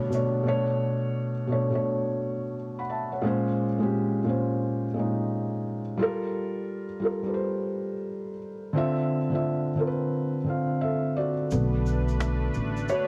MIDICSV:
0, 0, Header, 1, 6, 480
1, 0, Start_track
1, 0, Tempo, 689655
1, 328, Time_signature, 4, 2, 24, 8
1, 9100, End_track
2, 0, Start_track
2, 0, Title_t, "Felt piano"
2, 0, Program_c, 0, 0
2, 0, Control_c, 0, 64, 127
2, 0, Note_on_c, 0, 47, 84
2, 0, Note_on_c, 0, 57, 74
2, 0, Note_on_c, 0, 62, 73
2, 0, Note_on_c, 0, 73, 91
2, 69, Note_off_c, 0, 47, 0
2, 69, Note_on_c, 0, 47, 76
2, 82, Note_off_c, 0, 57, 0
2, 82, Note_on_c, 0, 57, 65
2, 93, Note_off_c, 0, 62, 0
2, 93, Note_on_c, 0, 62, 73
2, 103, Note_off_c, 0, 73, 0
2, 103, Note_on_c, 0, 73, 77
2, 283, Note_off_c, 0, 47, 0
2, 289, Note_off_c, 0, 57, 0
2, 295, Note_off_c, 0, 62, 0
2, 300, Note_off_c, 0, 73, 0
2, 302, Note_on_c, 0, 47, 90
2, 317, Note_on_c, 0, 57, 80
2, 327, Note_on_c, 0, 62, 86
2, 337, Note_on_c, 0, 73, 102
2, 338, Control_c, 0, 64, 0
2, 441, Control_c, 0, 64, 127
2, 906, Note_off_c, 0, 47, 0
2, 914, Note_off_c, 0, 57, 0
2, 919, Note_off_c, 0, 62, 0
2, 924, Note_off_c, 0, 73, 0
2, 1026, Note_on_c, 0, 47, 80
2, 1035, Note_on_c, 0, 57, 72
2, 1049, Note_on_c, 0, 62, 65
2, 1060, Note_on_c, 0, 73, 80
2, 1160, Note_off_c, 0, 47, 0
2, 1165, Note_off_c, 0, 57, 0
2, 1171, Note_off_c, 0, 62, 0
2, 1177, Note_off_c, 0, 73, 0
2, 1186, Note_on_c, 0, 47, 72
2, 1198, Note_on_c, 0, 57, 70
2, 1210, Note_on_c, 0, 62, 59
2, 1220, Note_on_c, 0, 73, 76
2, 1776, Note_off_c, 0, 73, 0
2, 1939, Note_off_c, 0, 47, 0
2, 1941, Note_on_c, 0, 83, 62
2, 1945, Note_off_c, 0, 57, 0
2, 1945, Note_on_c, 0, 78, 48
2, 1950, Note_off_c, 0, 62, 0
2, 2013, Note_off_c, 0, 83, 0
2, 2015, Note_off_c, 0, 78, 0
2, 2016, Note_on_c, 0, 81, 59
2, 2020, Note_on_c, 0, 76, 53
2, 2161, Note_off_c, 0, 81, 0
2, 2163, Note_off_c, 0, 76, 0
2, 2172, Note_on_c, 0, 78, 56
2, 2176, Note_on_c, 0, 73, 50
2, 2238, Note_on_c, 0, 46, 101
2, 2249, Note_on_c, 0, 56, 88
2, 2257, Control_c, 0, 64, 0
2, 2260, Note_on_c, 0, 61, 89
2, 2274, Note_on_c, 0, 72, 97
2, 2396, Note_off_c, 0, 78, 0
2, 2397, Control_c, 0, 64, 127
2, 2399, Note_off_c, 0, 73, 0
2, 2539, Note_off_c, 0, 46, 0
2, 2544, Note_off_c, 0, 56, 0
2, 2549, Note_off_c, 0, 61, 0
2, 2557, Note_off_c, 0, 72, 0
2, 2635, Note_on_c, 0, 46, 73
2, 2645, Note_on_c, 0, 56, 79
2, 2656, Note_on_c, 0, 61, 69
2, 2667, Note_on_c, 0, 67, 80
2, 2909, Note_off_c, 0, 46, 0
2, 2915, Note_off_c, 0, 56, 0
2, 2920, Note_off_c, 0, 61, 0
2, 2925, Note_off_c, 0, 67, 0
2, 2952, Note_on_c, 0, 46, 81
2, 2966, Note_on_c, 0, 56, 65
2, 2976, Note_on_c, 0, 61, 68
2, 2988, Note_on_c, 0, 72, 82
2, 3368, Note_off_c, 0, 46, 0
2, 3376, Note_off_c, 0, 56, 0
2, 3380, Note_off_c, 0, 61, 0
2, 3386, Note_off_c, 0, 72, 0
2, 3439, Note_on_c, 0, 46, 79
2, 3451, Note_on_c, 0, 56, 64
2, 3462, Note_on_c, 0, 61, 61
2, 3475, Note_on_c, 0, 63, 72
2, 4034, Note_off_c, 0, 46, 0
2, 4041, Note_off_c, 0, 56, 0
2, 4046, Note_off_c, 0, 61, 0
2, 4052, Note_off_c, 0, 63, 0
2, 4159, Note_on_c, 0, 55, 98
2, 4171, Note_on_c, 0, 65, 98
2, 4176, Control_c, 0, 64, 0
2, 4182, Note_on_c, 0, 69, 86
2, 4194, Note_on_c, 0, 70, 101
2, 4311, Control_c, 0, 64, 127
2, 4754, Note_off_c, 0, 55, 0
2, 4760, Note_off_c, 0, 65, 0
2, 4766, Note_off_c, 0, 69, 0
2, 4772, Note_off_c, 0, 70, 0
2, 4870, Note_on_c, 0, 55, 79
2, 4884, Note_on_c, 0, 65, 67
2, 4895, Note_on_c, 0, 69, 64
2, 4906, Note_on_c, 0, 70, 77
2, 5002, Note_off_c, 0, 55, 0
2, 5009, Note_off_c, 0, 65, 0
2, 5014, Note_off_c, 0, 69, 0
2, 5020, Note_off_c, 0, 70, 0
2, 5030, Note_on_c, 0, 55, 77
2, 5041, Note_on_c, 0, 65, 63
2, 5054, Note_on_c, 0, 69, 64
2, 5066, Note_on_c, 0, 71, 61
2, 5087, Note_off_c, 0, 71, 0
2, 5108, Note_on_c, 0, 72, 86
2, 5781, Note_off_c, 0, 55, 0
2, 5786, Note_off_c, 0, 65, 0
2, 5792, Note_off_c, 0, 69, 0
2, 5820, Note_off_c, 0, 72, 0
2, 6076, Note_on_c, 0, 50, 94
2, 6087, Note_on_c, 0, 60, 91
2, 6096, Note_on_c, 0, 65, 92
2, 6098, Control_c, 0, 64, 0
2, 6107, Note_on_c, 0, 76, 104
2, 6215, Control_c, 0, 64, 127
2, 6377, Note_off_c, 0, 50, 0
2, 6383, Note_off_c, 0, 60, 0
2, 6388, Note_off_c, 0, 65, 0
2, 6393, Note_off_c, 0, 76, 0
2, 6472, Note_on_c, 0, 50, 78
2, 6485, Note_on_c, 0, 60, 71
2, 6493, Note_on_c, 0, 65, 67
2, 6507, Note_on_c, 0, 76, 79
2, 6748, Note_off_c, 0, 50, 0
2, 6754, Note_off_c, 0, 60, 0
2, 6759, Note_off_c, 0, 65, 0
2, 6766, Note_off_c, 0, 76, 0
2, 6789, Note_on_c, 0, 50, 69
2, 6800, Note_on_c, 0, 60, 69
2, 6813, Note_on_c, 0, 65, 75
2, 6824, Note_on_c, 0, 70, 64
2, 6870, Note_on_c, 0, 71, 82
2, 6875, Note_off_c, 0, 70, 0
2, 7207, Note_off_c, 0, 50, 0
2, 7212, Note_off_c, 0, 60, 0
2, 7219, Note_off_c, 0, 65, 0
2, 7248, Note_off_c, 0, 71, 0
2, 7268, Note_on_c, 0, 50, 68
2, 7282, Note_on_c, 0, 60, 67
2, 7295, Note_on_c, 0, 65, 66
2, 7305, Note_on_c, 0, 77, 75
2, 7525, Note_on_c, 0, 76, 90
2, 7538, Note_on_c, 0, 69, 68
2, 7757, Note_off_c, 0, 69, 0
2, 7771, Note_on_c, 0, 74, 87
2, 7774, Note_off_c, 0, 76, 0
2, 7779, Note_on_c, 0, 66, 74
2, 7869, Note_off_c, 0, 50, 0
2, 7876, Note_off_c, 0, 60, 0
2, 7883, Note_off_c, 0, 65, 0
2, 7888, Note_off_c, 0, 77, 0
2, 8013, Note_on_c, 0, 50, 54
2, 8017, Control_c, 0, 64, 0
2, 8018, Note_on_c, 0, 57, 50
2, 8019, Note_on_c, 0, 59, 62
2, 8148, Control_c, 0, 64, 127
2, 8946, Note_off_c, 0, 66, 0
2, 8975, Note_on_c, 0, 73, 96
2, 8981, Note_on_c, 0, 66, 69
2, 9006, Note_off_c, 0, 74, 0
2, 9100, Note_off_c, 0, 50, 0
2, 9100, Note_off_c, 0, 57, 0
2, 9100, Note_off_c, 0, 59, 0
2, 9100, Note_off_c, 0, 66, 0
2, 9100, Note_off_c, 0, 73, 0
2, 9100, End_track
3, 0, Start_track
3, 0, Title_t, "Analog synth pad"
3, 0, Program_c, 1, 89
3, 0, Note_on_c, 1, 50, 77
3, 0, Note_on_c, 1, 55, 69
3, 0, Note_on_c, 1, 59, 71
3, 0, Note_on_c, 1, 62, 77
3, 302, Note_off_c, 1, 55, 0
3, 310, Note_off_c, 1, 50, 0
3, 310, Note_off_c, 1, 59, 0
3, 311, Note_off_c, 1, 62, 0
3, 8007, Note_on_c, 1, 62, 91
3, 8008, Note_on_c, 1, 57, 68
3, 8008, Note_on_c, 1, 71, 76
3, 9100, Note_off_c, 1, 57, 0
3, 9100, Note_off_c, 1, 62, 0
3, 9100, Note_off_c, 1, 71, 0
3, 9100, End_track
4, 0, Start_track
4, 0, Title_t, "Upright bass"
4, 0, Program_c, 2, 32
4, 8015, Note_on_c, 2, 35, 97
4, 8704, Note_off_c, 2, 35, 0
4, 8737, Note_on_c, 2, 33, 81
4, 8954, Note_off_c, 2, 33, 0
4, 9100, End_track
5, 0, Start_track
5, 0, Title_t, "Cajon"
5, 93, Note_on_c, 9, 38, 33
5, 163, Note_off_c, 9, 38, 0
5, 8015, Note_on_c, 9, 38, 44
5, 8084, Note_off_c, 9, 38, 0
5, 8254, Note_on_c, 9, 38, 42
5, 8324, Note_off_c, 9, 38, 0
5, 8495, Note_on_c, 9, 38, 118
5, 8564, Note_off_c, 9, 38, 0
5, 8737, Note_on_c, 9, 38, 37
5, 8807, Note_off_c, 9, 38, 0
5, 8972, Note_on_c, 9, 38, 40
5, 9042, Note_off_c, 9, 38, 0
5, 9100, End_track
6, 0, Start_track
6, 0, Title_t, "Drums"
6, 86, Note_on_c, 9, 82, 52
6, 155, Note_off_c, 9, 82, 0
6, 8009, Note_on_c, 9, 82, 85
6, 8079, Note_off_c, 9, 82, 0
6, 8256, Note_on_c, 9, 82, 44
6, 8326, Note_off_c, 9, 82, 0
6, 8410, Note_on_c, 9, 82, 44
6, 8479, Note_off_c, 9, 82, 0
6, 8498, Note_on_c, 9, 82, 61
6, 8567, Note_off_c, 9, 82, 0
6, 8728, Note_on_c, 9, 82, 42
6, 8798, Note_off_c, 9, 82, 0
6, 8886, Note_on_c, 9, 82, 48
6, 8956, Note_off_c, 9, 82, 0
6, 8967, Note_on_c, 9, 82, 59
6, 9037, Note_off_c, 9, 82, 0
6, 9100, End_track
0, 0, End_of_file